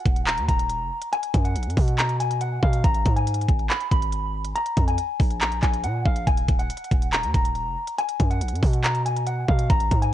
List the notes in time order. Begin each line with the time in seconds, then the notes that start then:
Already playing: F#5
0.06 D#1, kick, closed hi-hat
0.16 closed hi-hat
0.27 A#5, clap, closed hi-hat
0.38 D#2, closed hi-hat
0.48 D#1 A#5, kick, closed hi-hat
0.59 closed hi-hat
0.69 closed hi-hat
0.81 F1
1.02 closed hi-hat
1.13 G#5, closed hi-hat
1.23 closed hi-hat
1.34 F#2, kick, closed hi-hat
1.45 F#5, closed hi-hat
1.56 A#1, closed hi-hat
1.63 F#2, closed hi-hat
1.70 closed hi-hat
1.77 B2, kick, open hi-hat
1.88 closed hi-hat
1.98 A#5, clap, closed hi-hat
2.09 closed hi-hat
2.20 G#5, closed hi-hat
2.31 closed hi-hat
2.41 F#5, closed hi-hat
2.63 B2 F5, kick
2.73 closed hi-hat
2.84 G#1 A#5, kick, closed hi-hat
2.94 closed hi-hat
3.06 G#2, kick, closed hi-hat
3.16 G#5, closed hi-hat
3.27 closed hi-hat
3.34 closed hi-hat
3.41 closed hi-hat
3.48 G#1, kick, closed hi-hat
3.59 closed hi-hat
3.70 B5, clap, closed hi-hat
3.80 closed hi-hat
3.91 G#1 B5, kick, closed hi-hat
4.02 closed hi-hat
4.12 closed hi-hat
4.45 closed hi-hat
4.55 A#5, closed hi-hat
4.66 closed hi-hat
4.77 F2, kick, closed hi-hat
4.88 G#5, closed hi-hat
4.98 closed hi-hat
5.20 A#1, kick, open hi-hat
5.31 closed hi-hat
5.41 A#5, clap, closed hi-hat
5.52 closed hi-hat
5.63 A#1 G#5, kick, clap, closed hi-hat
5.74 closed hi-hat
5.84 A#2 F#5, closed hi-hat
6.05 A#1 F5, kick
6.16 closed hi-hat
6.27 D#1 G#5, kick, closed hi-hat
6.37 closed hi-hat
6.48 D#1, kick, closed hi-hat
6.59 F#5, closed hi-hat
6.70 closed hi-hat
6.77 closed hi-hat
6.84 closed hi-hat
6.91 D#1, kick, closed hi-hat
7.02 closed hi-hat
7.13 A#5, clap, closed hi-hat
7.23 D#2, closed hi-hat
7.34 D#1 A#5, kick, closed hi-hat
7.45 closed hi-hat
7.55 closed hi-hat
7.66 F1
7.87 closed hi-hat
7.98 G#5, closed hi-hat
8.09 closed hi-hat
8.20 F#2, kick, closed hi-hat
8.30 F#5, closed hi-hat
8.41 A#1, closed hi-hat
8.48 F#2, closed hi-hat
8.56 closed hi-hat
8.63 B2, kick, open hi-hat
8.73 closed hi-hat
8.84 A#5, clap, closed hi-hat
8.95 closed hi-hat
9.06 G#5, closed hi-hat
9.16 closed hi-hat
9.27 F#5, closed hi-hat
9.48 B2 F5, kick
9.59 closed hi-hat
9.70 G#1 A#5, kick, closed hi-hat
9.80 closed hi-hat
9.91 G#2, kick, closed hi-hat
10.02 G#5, closed hi-hat